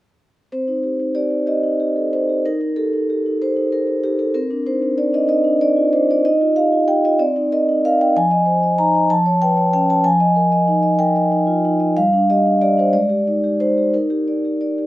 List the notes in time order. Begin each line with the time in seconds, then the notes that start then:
0.52 C4 C5
0.68 D#4
0.83 G4
1.00 D#4
1.15 G4 D5
1.30 D#4
1.47 G4 D#5
1.63 D#4
1.80 G4
1.96 A4
2.13 D#4 C5
2.29 G4
2.46 D#4 A#4
2.61 D#4
2.76 G4 A4
2.93 D#4
3.10 G4
3.26 D#4
3.42 G4 C5
3.56 D#4
3.72 G4 A#4
3.87 A4
4.04 D#4 G4
4.19 G4 A4
4.34 C4 A#4
4.50 D4
4.66 D#4 C5
4.82 D4
4.98 D#4 D5
5.13 D4 D#5
5.28 D#4 D#5
5.44 D4
5.61 D#4 D5
5.76 F4
5.93 D4 C5
6.09 D#4 D5
6.25 D#4 D#5
6.41 F4
6.56 G4 F5
6.72 F4
6.88 G4 G5
7.04 F4 D#5
7.19 C4 D5
7.36 D#4
7.52 A#4 D#5
7.69 D#4
7.85 A#4 F5
8.00 D#4 G5
8.16 F3 G#5
8.31 D#5
8.46 C5
8.63 D#5
8.78 D#4 A#5
8.95 D#5
9.10 F3 A5
9.26 C#5
9.42 B4 G5
9.57 C#5
9.73 C#4 G5
9.90 C#5 A5
10.04 F3 G#5
10.20 D#5
10.36 A#4
10.52 D#5
10.68 D#4
10.83 D#5
10.99 A#4 G5
11.16 D#5
11.32 D#4
11.47 F4
11.65 D#4
11.80 D#5
11.97 G3 F5
12.13 D4
12.30 G4 D#5
12.46 D4
12.61 G4 D5
12.78 D4 C5
12.93 G#3 D5
13.09 G4
13.27 D#4
13.44 G4
13.60 D#4 C5
13.78 G4
13.94 D#4 A#4
14.10 G4
14.28 D5
14.45 G4
14.61 D5
14.78 G4